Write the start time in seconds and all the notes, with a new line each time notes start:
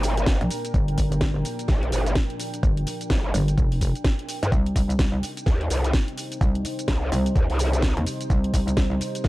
Already playing: G1 A#3 D4 G4 A#4 D5 G5
0.03 open hi-hat, shaker
0.17 closed hi-hat, shaker
0.26 kick, snare, shaker
0.41 A#1, closed hi-hat
0.51 open hi-hat, shaker
0.65 closed hi-hat, shaker
0.74 G1 F4, kick, shaker
0.88 closed hi-hat
0.98 G1, kick, open hi-hat, shaker
1.12 closed hi-hat, shaker
1.21 kick, snare, shaker
1.45 open hi-hat, shaker
1.59 closed hi-hat, shaker
1.68 A#1, kick, snare, shaker
1.83 closed hi-hat
1.92 G1, open hi-hat, shaker
2.06 closed hi-hat, shaker
2.15 kick, snare, shaker
2.30 closed hi-hat
2.40 open hi-hat, shaker
2.54 closed hi-hat, shaker
2.63 G1, kick, shaker
2.77 closed hi-hat
2.87 open hi-hat, shaker
3.01 closed hi-hat, shaker
3.10 G1, kick, snare, shaker
3.34 G1, open hi-hat, shaker
3.48 closed hi-hat, shaker
3.58 F1, kick, shaker
3.72 open hi-hat
3.81 kick, open hi-hat, shaker
3.95 closed hi-hat, shaker
4.04 kick, snare, shaker
4.19 closed hi-hat
4.29 open hi-hat, shaker
4.43 G2, closed hi-hat, shaker
4.52 C2 C4 D#4 G4 D#5, kick, shaker
4.66 closed hi-hat
4.76 C2, kick, open hi-hat, shaker
4.90 closed hi-hat, shaker
4.99 kick, snare, shaker
5.09 C5
5.23 open hi-hat, shaker
5.37 closed hi-hat, shaker
5.46 D#2, kick, snare, shaker
5.61 closed hi-hat
5.70 C2, open hi-hat, shaker
5.84 closed hi-hat, shaker
5.93 kick, snare, shaker
6.08 closed hi-hat
6.18 open hi-hat, shaker
6.32 closed hi-hat, shaker
6.41 C2, kick, shaker
6.55 closed hi-hat
6.65 open hi-hat, shaker
6.79 closed hi-hat, shaker
6.88 C2, kick, snare, shaker
7.12 C2, open hi-hat, shaker
7.26 closed hi-hat, shaker
7.36 D#2, kick, shaker
7.50 C2, open hi-hat
7.59 open hi-hat, shaker
7.73 closed hi-hat, shaker
7.82 kick, snare, shaker
7.97 D#2, closed hi-hat
8.06 open hi-hat, shaker
8.21 closed hi-hat, shaker
8.30 C2, kick, shaker
8.44 closed hi-hat
8.54 C2, kick, open hi-hat, shaker
8.68 closed hi-hat, shaker
8.77 kick, snare, shaker
9.01 open hi-hat, shaker
9.15 closed hi-hat, shaker
9.24 D#2, kick, snare, shaker